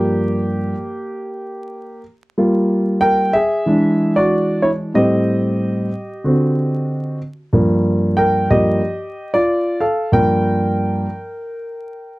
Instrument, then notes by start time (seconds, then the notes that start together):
grand piano
Already playing: G2 F3 A#3 G4
2.38 G3 A#3 F4
3.01 A#4 G5
3.33 G#4 E5
3.66 E3 G#3 D4
4.16 F#4 D5
4.62 E4 C#5
4.94 A2 G3 C4 G4 D#5
6.24 D3 C4 F#4
7.53 G2 F3 A#3
8.17 A#4 G5
8.50 G2 F3 A#3 G4 D#5
9.34 F4 D5
9.80 A4 F5
10.12 G2 F3 A#3 A#4 G5